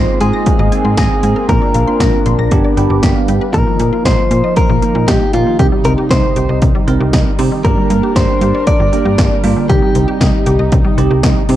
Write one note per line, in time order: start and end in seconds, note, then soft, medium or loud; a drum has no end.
0.00 1.47 G#3 medium
0.00 2.49 A#3 medium
0.00 0.59 C4 medium
0.00 2.48 C4 medium
0.00 0.59 D#4 medium
0.00 0.59 F4 medium
0.00 0.21 C5 loud
0.20 0.32 G#2 loud
0.20 0.97 G#4 medium
0.20 0.30 C6 loud
0.20 closed hi-hat medium
0.33 0.43 A#6 medium
0.46 kick loud
0.46 closed hi-hat medium
0.59 0.71 G#1 loud
0.59 0.69 D#5 medium
0.72 1.38 C4 medium
0.72 1.38 D#4 medium
0.72 1.38 G#4 medium
0.72 0.81 G#5 medium
0.72 closed hi-hat medium
0.85 0.96 G#2 medium
0.85 0.94 C6 medium
0.97 1.09 G#1 loud
0.97 1.49 G#4 medium
0.97 1.07 A#6 loud
0.97 kick loud
0.97 snare loud
0.97 closed hi-hat medium
1.23 1.35 G#2 loud
1.23 1.33 G#5 medium
1.23 closed hi-hat medium
1.36 1.46 A#4 medium
1.49 1.60 A#1 loud
1.49 1.82 A#3 medium
1.49 1.82 D4 medium
1.49 3.52 D4 medium
1.49 1.82 F4 medium
1.49 1.58 A#4 medium
1.49 2.99 A#4 medium
1.49 kick loud
1.49 closed hi-hat medium
1.62 1.71 D5 medium
1.74 1.86 A#1 loud
1.74 1.84 F5 medium
1.74 closed hi-hat medium
1.88 2.52 A#3 medium
1.88 2.50 D4 medium
1.88 2.52 F4 medium
1.88 1.97 C6 medium
2.00 2.12 A#1 loud
2.00 2.10 A#6 medium
2.00 kick loud
2.00 snare loud
2.00 closed hi-hat medium
2.26 2.37 A#1 loud
2.26 2.35 C6 medium
2.26 closed hi-hat medium
2.39 2.50 A#1 loud
2.39 2.48 A#6 medium
2.51 2.63 G1 loud
2.51 3.53 G3 medium
2.51 3.53 B3 medium
2.51 2.74 B3 medium
2.51 2.74 D4 medium
2.51 2.74 G4 loud
2.51 kick loud
2.51 closed hi-hat medium
2.64 2.74 D5 medium
2.77 2.88 G1 loud
2.77 3.43 B3 medium
2.77 3.43 D4 medium
2.77 3.43 G4 medium
2.77 2.87 G5 medium
2.77 3.01 B5 medium
2.77 closed hi-hat medium
2.90 3.01 G1 loud
2.90 3.00 D6 medium
3.03 3.14 G1 loud
3.03 3.15 G5 medium
3.03 3.12 B6 loud
3.03 kick loud
3.03 snare loud
3.03 closed hi-hat medium
3.16 3.51 F5 medium
3.28 3.40 G2 medium
3.28 3.38 G5 medium
3.28 closed hi-hat medium
3.41 3.51 B4 medium
3.54 3.65 A#1 loud
3.54 3.64 D#3 medium
3.54 5.57 F3 medium
3.54 4.42 A#3 medium
3.54 4.42 D#4 medium
3.54 4.42 F4 medium
3.54 4.05 A#4 loud
3.54 kick loud
3.54 closed hi-hat medium
3.67 3.76 F3 medium
3.79 3.91 A#2 loud
3.79 3.89 A#3 medium
3.79 closed hi-hat medium
3.93 4.02 F4 medium
4.05 4.17 A#1 loud
4.05 4.56 C5 loud
4.05 4.15 D#5 medium
4.05 kick loud
4.05 snare loud
4.05 closed hi-hat medium
4.31 4.42 A#2 loud
4.31 4.41 F4 loud
4.31 closed hi-hat medium
4.44 4.53 D#5 medium
4.56 5.10 A#4 loud
4.56 kick loud
4.56 closed hi-hat medium
4.69 4.81 A#1 loud
4.69 4.79 F3 medium
4.82 5.26 A#3 medium
4.82 4.92 A#3 medium
4.82 5.26 D#4 medium
4.82 5.26 F4 medium
4.82 closed hi-hat medium
4.95 5.06 A#2 loud
4.95 5.05 F4 medium
5.08 5.19 A#1 loud
5.08 5.33 G4 medium
5.08 5.17 D#5 loud
5.08 kick loud
5.08 snare loud
5.08 closed hi-hat medium
5.33 5.45 A#2 loud
5.33 5.43 A#3 medium
5.33 5.56 A#3 medium
5.33 5.56 D#4 medium
5.33 5.58 F4 medium
5.33 5.56 F4 medium
5.33 closed hi-hat medium
5.46 5.56 D#3 medium
5.59 5.71 C2 loud
5.59 7.62 C3 medium
5.59 5.69 D#3 medium
5.59 11.56 G3 medium
5.59 6.47 C4 medium
5.59 6.47 D#4 medium
5.59 6.47 G4 medium
5.59 5.66 G4 medium
5.59 kick loud
5.59 closed hi-hat medium
5.72 5.82 G3 medium
5.85 5.96 C2 loud
5.85 5.94 C4 medium
5.85 5.92 A#4 medium
5.85 closed hi-hat medium
5.98 6.07 G4 medium
6.11 6.22 C2 loud
6.11 6.58 C5 medium
6.11 6.20 D#5 medium
6.11 kick loud
6.11 snare loud
6.11 closed hi-hat medium
6.36 6.48 C2 loud
6.36 6.46 G4 loud
6.36 closed hi-hat medium
6.49 6.60 C2 loud
6.49 6.59 D#5 medium
6.62 6.73 C2 loud
6.62 kick loud
6.62 closed hi-hat medium
6.75 6.84 G3 medium
6.87 6.99 C2 loud
6.87 7.32 C4 medium
6.87 6.97 C4 medium
6.87 7.32 D#4 medium
6.87 7.32 A#4 loud
6.87 closed hi-hat medium
7.00 7.12 C2 loud
7.00 7.10 G4 medium
7.13 7.25 C2 loud
7.13 7.23 D#5 loud
7.13 kick loud
7.13 snare loud
7.13 closed hi-hat medium
7.39 7.50 C3 loud
7.39 7.61 C4 medium
7.39 7.48 C4 medium
7.39 7.61 D#4 medium
7.39 7.61 G4 medium
7.39 open hi-hat medium
7.52 7.61 D#3 medium
7.64 7.76 G1 loud
7.64 7.74 D3 medium
7.64 8.53 A#3 medium
7.64 8.53 D4 medium
7.64 9.68 D4 medium
7.64 8.52 G4 medium
7.64 8.16 A#4 loud
7.64 9.68 A#4 medium
7.64 kick loud
7.64 closed hi-hat medium
7.78 7.87 G3 medium
7.90 8.01 G2 loud
7.90 8.00 A#3 medium
7.90 closed hi-hat medium
8.03 8.13 G4 medium
8.16 8.27 G1 loud
8.16 8.67 C5 loud
8.16 8.25 D5 medium
8.16 kick loud
8.16 snare loud
8.16 closed hi-hat medium
8.41 8.53 G2 loud
8.41 8.51 G4 loud
8.41 closed hi-hat medium
8.55 8.64 D5 medium
8.67 9.66 D5 loud
8.67 kick loud
8.67 closed hi-hat medium
8.80 8.91 G1 medium
8.80 8.89 G3 medium
8.93 9.37 A#3 medium
8.93 9.02 A#3 medium
8.93 9.37 D4 medium
8.93 9.37 G4 medium
8.93 closed hi-hat medium
9.05 9.17 G2 loud
9.05 9.15 G4 medium
9.18 9.30 G1 loud
9.18 9.28 D5 loud
9.18 kick loud
9.18 snare loud
9.18 closed hi-hat medium
9.44 9.55 G2 loud
9.44 9.53 A#3 medium
9.44 9.66 A#3 medium
9.44 9.66 D4 medium
9.44 9.66 F4 medium
9.44 open hi-hat medium
9.57 9.66 D3 medium
9.69 9.81 C2 loud
9.69 11.56 C3 medium
9.69 9.79 D#3 medium
9.69 10.57 C4 medium
9.69 10.57 D#4 medium
9.69 11.56 D#4 medium
9.69 10.58 G4 medium
9.69 11.19 G4 medium
9.69 kick loud
9.69 closed hi-hat medium
9.82 9.92 G3 medium
9.95 10.06 C2 loud
9.95 10.05 C4 medium
9.95 closed hi-hat medium
10.08 10.17 G4 loud
10.21 10.32 C2 loud
10.21 10.30 D#5 medium
10.21 kick loud
10.21 snare loud
10.21 closed hi-hat medium
10.46 10.58 C2 loud
10.46 10.56 G4 loud
10.46 closed hi-hat medium
10.59 10.71 C2 medium
10.59 10.69 D#5 medium
10.72 10.83 C2 loud
10.72 kick loud
10.72 closed hi-hat medium
10.85 10.94 G3 medium
10.98 11.09 C2 loud
10.98 11.07 C4 medium
10.98 11.42 C4 medium
10.98 11.42 D#4 medium
10.98 11.42 G4 medium
10.98 closed hi-hat medium
11.11 11.22 C2 loud
11.11 11.20 G4 medium
11.23 11.35 C2 loud
11.23 11.33 D#5 loud
11.23 kick loud
11.23 snare loud
11.23 closed hi-hat medium
11.49 11.56 C3 loud
11.49 11.56 C4 medium
11.49 11.56 D#4 medium
11.49 11.56 G4 medium
11.49 open hi-hat medium